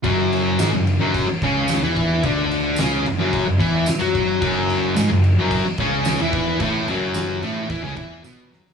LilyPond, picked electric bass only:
\new Staff \with { instrumentName = "Picked electric bass" } { \clef bass \time 4/4 \key fis \minor \tempo 4 = 110 fis,,4 gis,,16 fis,,8 fis,,8 r16 cis,8. e,8. | d,4 cis,8 fis,,16 fis,,8 fis,,16 e,8 r16 fis,8. | fis,,4 gis,,16 fis,,8 fis,,8 r16 cis,8. e,8. | a,,8 fis,,4 a,,8 e,16 cis,16 e,8 b,,8 fis,,8 | }